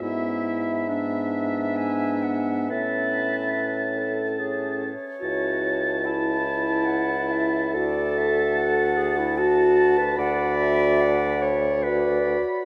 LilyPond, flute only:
\new Staff \with { instrumentName = "Flute" } { \time 3/4 \key a \major \tempo 4 = 72 e''2 gis''8 fis''8 | e''4. r8 cis''4~ | cis''4 a''4 fis''8 e''8 | d''8 e''8 fis''4 a''4 |
fis''8 e''8 fis''8 r8 d''4 | }